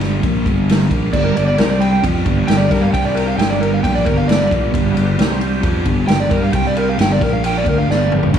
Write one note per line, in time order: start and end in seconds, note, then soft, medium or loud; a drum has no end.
0.00 0.19 G1 medium
0.00 0.22 G2 medium
0.00 0.22 D3 loud
0.00 0.23 G3 loud
0.00 snare soft
0.00 ride medium
0.23 0.44 A#1 medium
0.23 0.44 A#2 medium
0.23 0.45 F3 medium
0.23 0.46 A#3 loud
0.23 kick loud
0.23 ride medium
0.44 0.88 G1 medium
0.44 0.89 G2 medium
0.44 0.89 D3 loud
0.44 0.90 G3 loud
0.44 kick loud
0.44 ride medium
0.69 snare loud
0.69 ride medium
0.90 1.11 A#1 medium
0.90 1.12 A#2 medium
0.90 1.12 F3 medium
0.90 1.12 A#3 medium
0.90 kick loud
0.90 ride medium
1.12 1.34 G1 loud
1.12 1.34 G2 medium
1.12 1.35 D3 medium
1.12 1.57 G3 medium
1.12 1.35 G3 loud
1.12 1.57 B3 medium
1.12 1.57 D4 medium
1.12 1.57 G4 medium
1.12 1.24 D5 loud
1.12 kick loud
1.12 crash loud
1.24 1.35 A#4 loud
1.35 1.57 G1 medium
1.35 1.53 G2 medium
1.35 1.54 D3 medium
1.35 1.46 D5 medium
1.35 ride medium
1.48 1.58 D5 medium
1.57 2.00 C2 medium
1.57 2.02 C3 medium
1.57 2.02 G3 loud
1.57 2.03 G3 medium
1.57 2.02 C4 medium
1.57 2.01 C4 loud
1.57 2.03 G4 medium
1.57 1.69 A#4 medium
1.57 2.02 C5 medium
1.57 snare loud
1.57 ride medium
1.70 1.80 D5 medium
1.80 2.02 G5 loud
1.80 ride medium
2.02 2.24 F2 medium
2.02 2.24 F3 medium
2.02 2.92 B3 medium
2.02 2.25 C4 loud
2.02 2.92 D4 medium
2.02 2.25 F4 medium
2.02 2.92 G4 medium
2.02 2.92 B4 medium
2.02 kick loud
2.02 ride loud
2.24 2.46 G1 medium
2.24 2.47 G2 medium
2.24 2.47 D3 loud
2.24 2.47 G3 loud
2.24 kick loud
2.24 ride medium
2.47 2.68 G1 medium
2.47 2.66 G2 medium
2.47 2.66 D3 medium
2.47 2.59 G5 medium
2.47 snare loud
2.47 ride loud
2.57 2.69 D5 medium
2.70 2.91 G2 medium
2.70 2.92 G3 medium
2.70 2.92 D4 medium
2.70 2.93 G4 medium
2.70 2.82 A#4 loud
2.70 kick loud
2.70 snare soft
2.70 ride medium
2.81 2.92 F5 medium
2.92 3.35 C2 medium
2.92 3.37 C3 medium
2.92 3.37 G3 loud
2.92 3.38 G3 medium
2.92 3.37 C4 loud
2.92 3.38 C4 medium
2.92 3.37 G4 medium
2.92 3.38 C5 medium
2.92 3.04 G5 medium
2.92 kick loud
2.92 ride loud
3.05 3.15 D5 medium
3.15 3.26 A#4 medium
3.15 ride medium
3.27 3.38 F5 medium
3.36 3.79 G1 medium
3.36 3.82 G2 medium
3.36 3.82 D3 loud
3.36 3.82 G3 loud
3.36 5.16 B3 medium
3.36 5.17 D4 medium
3.36 5.16 G4 medium
3.36 5.16 B4 medium
3.36 3.49 G5 loud
3.36 ride medium
3.41 snare loud
3.50 3.60 D5 medium
3.61 3.71 A#4 medium
3.61 ride medium
3.74 3.83 F5 medium
3.83 4.04 A#1 loud
3.83 4.05 A#2 medium
3.83 4.05 F3 medium
3.83 4.05 A#3 loud
3.83 3.94 G5 loud
3.83 kick loud
3.83 ride medium
3.95 4.05 D5 loud
4.05 4.47 G1 medium
4.05 4.50 G2 loud
4.05 4.49 D3 medium
4.05 4.49 G3 medium
4.05 4.16 A#4 loud
4.05 kick loud
4.05 ride medium
4.18 4.28 F5 medium
4.28 4.50 D5 loud
4.28 snare loud
4.28 ride medium
4.49 4.72 A#1 medium
4.49 4.71 A#2 medium
4.49 4.72 F3 loud
4.49 4.72 A#3 loud
4.49 kick loud
4.49 ride medium
4.72 4.95 G1 loud
4.72 4.94 G2 loud
4.72 4.94 D3 loud
4.72 4.94 G3 loud
4.72 kick loud
4.72 ride loud
4.96 5.16 G1 medium
4.96 5.14 G2 medium
4.96 5.14 D3 medium
4.96 ride medium
5.18 5.60 C2 medium
5.18 5.61 C3 loud
5.18 5.62 G3 loud
5.18 5.63 G3 medium
5.18 5.61 C4 loud
5.18 5.63 C4 medium
5.18 5.63 G4 medium
5.18 5.63 C5 medium
5.18 snare loud
5.18 ride medium
5.41 ride medium
5.62 5.84 F2 loud
5.62 5.84 F3 loud
5.62 6.52 B3 medium
5.62 5.84 C4 loud
5.62 6.52 D4 medium
5.62 5.85 F4 loud
5.62 6.53 G4 medium
5.62 6.52 B4 medium
5.62 kick loud
5.62 ride loud
5.85 6.07 G1 medium
5.85 6.06 G2 loud
5.85 6.06 D3 loud
5.85 6.07 G3 loud
5.85 kick loud
5.85 ride medium
6.07 6.29 G1 medium
6.07 6.25 G2 medium
6.07 6.26 D3 medium
6.07 6.19 G5 loud
6.07 snare loud
6.07 ride loud
6.20 6.30 D5 loud
6.30 6.52 G2 medium
6.30 6.51 G3 medium
6.30 6.52 D4 loud
6.30 6.52 G4 loud
6.30 6.41 A#4 medium
6.30 kick loud
6.30 ride medium
6.43 6.54 F5 medium
6.52 6.95 C2 loud
6.52 6.97 C3 medium
6.52 6.97 G3 loud
6.52 6.98 G3 medium
6.52 6.97 C4 medium
6.52 6.98 C4 medium
6.52 6.98 G4 medium
6.52 6.98 C5 medium
6.52 6.65 G5 medium
6.52 kick loud
6.52 ride loud
6.67 6.77 D5 loud
6.77 6.87 A#4 medium
6.77 ride medium
6.89 6.99 F5 medium
6.98 7.19 G1 medium
6.98 7.20 G2 loud
6.98 7.19 D3 medium
6.98 7.20 G3 loud
6.98 7.11 G5 loud
6.98 snare loud
6.98 ride loud
7.12 7.22 D5 medium
7.19 7.63 A#1 medium
7.19 7.64 A#2 medium
7.19 7.64 F3 loud
7.19 7.67 F3 medium
7.19 7.65 A#3 medium
7.19 7.66 A#3 medium
7.19 7.66 F4 medium
7.19 7.66 A#4 medium
7.19 7.33 A#4 medium
7.19 kick loud
7.19 snare soft
7.19 ride medium
7.33 7.43 F5 loud
7.44 7.56 G5 loud
7.44 ride loud
7.58 7.67 D5 medium
7.64 7.87 D2 medium
7.64 7.87 D3 medium
7.64 7.87 A3 loud
7.64 7.81 C4 medium
7.64 7.87 D4 loud
7.64 7.81 D#4 medium
7.64 7.82 G#4 medium
7.64 7.78 A#4 medium
7.64 7.81 C5 medium
7.64 kick loud
7.64 ride medium
7.78 8.39 B3 medium
7.78 8.39 D4 medium
7.78 8.39 G4 medium
7.78 8.39 B4 medium
7.78 7.89 F5 medium
7.88 8.30 G1 medium
7.88 8.31 G2 medium
7.88 8.32 D3 medium
7.88 8.32 G3 loud
7.88 8.11 D5 medium
7.88 snare medium
8.12 mid tom medium
8.23 floor tom medium
8.32 8.39 G1 medium
8.32 8.39 G2 loud
8.32 8.39 D3 loud
8.32 8.39 G3 loud
8.32 kick loud
8.32 crash medium